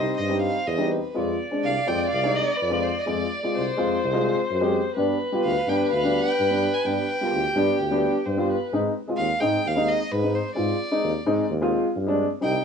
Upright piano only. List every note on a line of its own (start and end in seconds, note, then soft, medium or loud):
0.00 0.14 G3 medium
0.00 0.14 C4 medium
0.00 0.14 D#4 medium
0.29 0.55 G3 medium
0.29 0.55 C4 medium
0.29 0.55 D#4 medium
0.78 0.98 G3 medium
0.78 0.97 C4 medium
0.78 0.98 D#4 medium
1.15 1.33 G#3 medium
1.15 1.34 C4 medium
1.15 1.34 F4 medium
1.51 1.70 G#3 medium
1.51 1.70 C4 medium
1.51 1.70 D4 medium
1.86 2.05 G#3 medium
1.86 2.05 C4 medium
1.86 2.06 F4 medium
2.23 2.47 G#3 medium
2.23 2.47 C4 medium
2.23 2.48 D#4 medium
2.70 2.88 G#3 medium
2.70 2.89 C4 medium
2.70 2.89 F4 medium
3.06 3.24 G#3 medium
3.06 3.25 C4 medium
3.06 3.25 F4 medium
3.43 3.61 G#3 medium
3.43 3.61 C4 medium
3.43 3.61 F4 medium
3.77 3.95 G#3 medium
3.77 3.96 C4 medium
3.77 3.96 F4 medium
4.13 4.37 G#3 medium
4.13 4.37 C4 medium
4.13 4.37 F4 medium
4.61 4.78 G#3 medium
4.61 4.79 C4 medium
4.61 4.79 G4 medium
4.96 5.14 G3 medium
4.96 5.15 B3 medium
4.96 5.15 D4 medium
5.32 5.49 G3 medium
5.32 5.50 B3 medium
5.32 5.50 F4 medium
5.67 5.85 G3 medium
5.67 5.85 B3 medium
5.67 5.85 D4 medium
6.03 6.26 G3 medium
6.03 6.27 B3 medium
6.03 6.27 D4 medium
6.50 6.67 G3 medium
6.50 6.67 B3 medium
6.50 6.68 D4 medium
6.84 7.02 G3 medium
6.84 7.03 B3 medium
6.84 7.03 D4 medium
7.21 7.38 G3 medium
7.21 7.38 B3 medium
7.21 7.39 F4 medium
7.56 7.73 G3 medium
7.56 7.73 B3 medium
7.56 7.73 D4 medium
7.91 8.13 G3 medium
7.91 8.14 B3 medium
7.91 8.14 D4 medium
8.37 8.54 G3 medium
8.37 8.55 B3 medium
8.37 8.55 F4 medium
8.73 8.89 G#3 medium
8.73 8.90 C4 medium
8.73 8.90 D#4 medium
9.07 9.24 G#3 medium
9.07 9.25 C4 medium
9.07 9.25 F4 medium
9.40 9.58 G#3 medium
9.40 9.58 C4 medium
9.40 9.59 D#4 medium
9.76 9.99 G#3 medium
9.76 9.99 C4 medium
9.76 10.00 D#4 medium
10.22 10.40 G#3 medium
10.22 10.40 C4 medium
10.22 10.41 D#4 medium
10.55 10.73 G#3 medium
10.55 10.74 C4 medium
10.55 10.74 F4 medium
10.91 11.09 G#3 medium
10.91 11.09 C4 medium
10.91 11.09 D#4 medium
11.26 11.44 G#3 medium
11.26 11.44 C4 medium
11.26 11.44 D#4 medium
11.62 11.85 G#3 medium
11.62 11.85 C4 medium
11.62 11.85 F4 loud
12.07 12.24 G#3 medium
12.07 12.25 C4 medium
12.07 12.25 D4 loud
12.41 12.59 G3 medium
12.41 12.59 C4 medium
12.41 12.59 D#4 medium